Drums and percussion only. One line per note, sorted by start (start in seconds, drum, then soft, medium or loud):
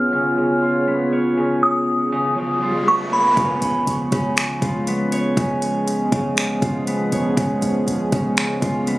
3.37 kick loud
3.37 closed hi-hat medium
3.62 closed hi-hat medium
3.87 closed hi-hat medium
4.12 kick medium
4.12 closed hi-hat medium
4.37 finger snap loud
4.37 closed hi-hat medium
4.62 kick medium
4.62 closed hi-hat medium
4.87 closed hi-hat medium
5.12 closed hi-hat medium
5.37 kick loud
5.37 closed hi-hat medium
5.62 closed hi-hat medium
5.88 closed hi-hat medium
6.12 kick medium
6.12 closed hi-hat medium
6.37 finger snap loud
6.37 closed hi-hat medium
6.62 kick medium
6.62 closed hi-hat medium
6.87 closed hi-hat medium
7.12 closed hi-hat medium
7.37 kick loud
7.37 closed hi-hat medium
7.62 closed hi-hat medium
7.88 closed hi-hat medium
8.12 kick medium
8.12 closed hi-hat medium
8.37 finger snap loud
8.37 closed hi-hat medium
8.62 kick medium
8.62 closed hi-hat medium
8.87 closed hi-hat medium